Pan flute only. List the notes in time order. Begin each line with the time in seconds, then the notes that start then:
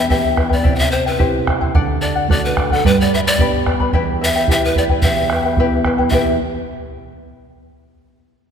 0.10 E5
0.53 D5
0.76 E5 G5
0.91 C5
1.07 B4
2.02 D5
2.31 D5
2.45 B4
2.73 A4
2.86 B4
3.01 D5
3.14 E5
3.27 D5
4.24 E5
4.51 E5
4.65 B4
4.78 D5
5.02 E5
6.10 E5